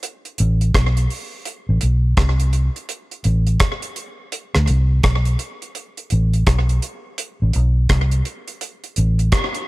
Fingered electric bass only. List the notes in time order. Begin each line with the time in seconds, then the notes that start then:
0.40 A1
0.76 B1
1.69 A1
1.83 B1
2.18 C2
3.25 A1
4.55 D2
4.69 C2
5.05 B1
6.12 A1
6.48 B1
7.42 A1
7.56 B1
7.90 C2
8.98 A1